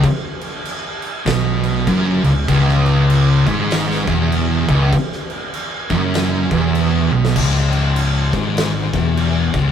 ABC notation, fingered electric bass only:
X:1
M:4/4
L:1/8
Q:"Swing" 1/4=98
K:C#m
V:1 name="Fingered electric bass" clef=bass
z4 B,,,2 F,,, C,,, | C,,,3 G,,,2 E,,,2 C,,, | z3 F,,,2 E,,,2 B,,, | C,,,3 G,,,2 E,,,2 C,,, |]